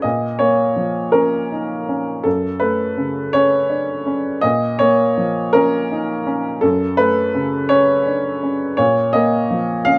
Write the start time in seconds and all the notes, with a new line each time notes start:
0.02 A#2 D#5
0.39 A#3 C#5
0.76 F3
1.12 C#4 A#4
1.52 D#4
1.89 C#4
2.24 F#2 A4
2.60 A3 B4
2.97 C#3
3.33 C#4 C#5
3.69 D4
4.06 C#4
4.41 A#2 D#5
4.79 A#3 C#5
5.17 F3
5.53 C#4 A#4
5.92 D#4
6.27 C#4
6.61 F#2 A4
6.97 A3 B4
7.34 C#3
7.69 C#4 C#5
8.07 D4
8.43 C#4
8.77 A#2 C#5
9.13 A#3 D#5
9.51 F3
9.85 C#4 F5